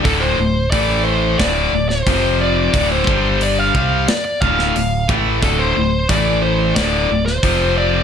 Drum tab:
HH |o---o---o---o---|o---o---o---o---|o---o---o---o---|
SD |--------o--o----|--------o--o----|--------o--o----|
BD |o---o---o---o---|o-o---o---o---o-|o---o---o---o---|